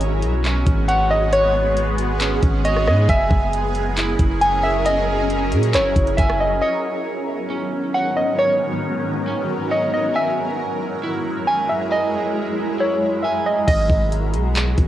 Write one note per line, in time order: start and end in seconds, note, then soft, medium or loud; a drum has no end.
0.00 0.24 G#1 loud
0.00 3.06 G#3 medium
0.00 3.06 B3 medium
0.00 1.31 F#4 loud
0.00 0.87 C#5 loud
0.00 closed hi-hat medium
0.22 0.64 B1 loud
0.22 closed hi-hat medium
0.44 1.77 C#4 medium
0.44 clap loud
0.44 closed hi-hat medium
0.66 2.39 G#1 loud
0.66 kick medium
0.66 closed hi-hat medium
0.88 1.32 C#5 medium
0.88 1.09 F#5 medium
0.88 closed hi-hat medium
1.11 1.32 D#5 medium
1.33 3.07 G#4 loud
1.33 1.74 C#5 loud
1.33 2.64 C#5 loud
1.33 closed hi-hat medium
1.77 closed hi-hat medium
1.99 closed hi-hat medium
2.21 3.09 C#4 medium
2.21 clap loud
2.21 closed hi-hat medium
2.43 2.89 G#1 loud
2.43 kick medium
2.43 closed hi-hat medium
2.65 3.09 C#5 medium
2.65 2.86 D#5 medium
2.65 closed hi-hat medium
2.77 cross-stick medium
2.87 3.08 G#2 loud
2.87 3.08 D#5 medium
2.87 cross-stick loud
3.09 3.30 F#1 loud
3.09 6.59 F#3 medium
3.09 6.59 C#4 medium
3.09 6.59 E4 medium
3.09 6.59 G#4 medium
3.09 6.59 A#4 loud
3.09 3.51 E5 loud
3.09 4.41 G#5 loud
3.09 kick loud
3.09 closed hi-hat medium
3.31 4.16 F#1 loud
3.31 kick loud
3.53 closed hi-hat medium
3.75 closed hi-hat medium
3.97 5.30 E4 loud
3.97 clap loud
3.97 closed hi-hat medium
4.19 5.53 F#1 loud
4.19 kick medium
4.19 closed hi-hat medium
4.41 4.62 G#5 medium
4.41 4.84 G#5 medium
4.41 closed hi-hat medium
4.63 4.84 E5 medium
4.85 5.27 D#5 loud
4.85 6.18 G#5 loud
4.85 closed hi-hat medium
5.30 closed hi-hat medium
5.52 5.75 A#2 loud
5.52 closed hi-hat medium
5.63 closed hi-hat medium
5.74 5.95 F#1 loud
5.74 6.62 E4 loud
5.74 6.16 C#5 loud
5.74 clap loud
5.74 closed hi-hat medium
5.96 6.17 F#1 loud
5.96 kick medium
5.96 closed hi-hat medium
6.07 closed hi-hat soft
6.17 6.60 F#1 loud
6.17 6.38 E5 medium
6.17 6.63 G#5 loud
6.17 kick medium
6.17 closed hi-hat medium
6.29 cross-stick loud
6.40 6.60 D#5 medium
6.62 10.12 G#2 medium
6.62 10.12 D#3 medium
6.62 13.64 F#3 medium
6.62 10.12 B3 medium
6.62 10.12 C#4 medium
6.62 13.64 A#4 medium
6.62 7.93 C#5 medium
6.62 7.03 D#5 loud
7.50 8.83 C#4 medium
7.94 8.38 C#5 medium
7.94 8.15 F#5 medium
8.17 8.38 D#5 medium
8.39 8.80 C#5 loud
8.39 9.70 C#5 medium
9.27 10.15 C#4 medium
9.71 10.15 C#5 medium
9.71 9.92 D#5 medium
9.93 10.14 D#5 medium
10.15 13.65 F#2 medium
10.15 13.65 G#3 medium
10.15 13.64 E4 medium
10.15 10.57 E5 loud
10.15 11.47 G#5 medium
11.03 12.36 E4 medium
11.47 11.68 G#5 medium
11.47 11.90 G#5 medium
11.69 11.90 E5 medium
11.91 12.33 D#5 loud
11.91 13.24 G#5 loud
12.79 13.68 E4 medium
12.79 13.22 C#5 medium
13.23 13.44 E5 medium
13.23 13.69 G#5 medium
13.46 13.66 D#5 medium
13.68 13.89 G#1 loud
13.68 14.88 G#3 medium
13.68 14.88 B3 medium
13.68 14.88 F#4 medium
13.68 14.09 D#5 loud
13.68 kick loud
13.68 closed hi-hat medium
13.68 crash medium
13.90 14.36 G#1 loud
13.90 kick loud
14.12 closed hi-hat medium
14.34 14.76 B1 loud
14.34 closed hi-hat medium
14.56 clap loud
14.56 closed hi-hat medium
14.78 14.88 G#1 loud
14.78 kick medium
14.78 closed hi-hat medium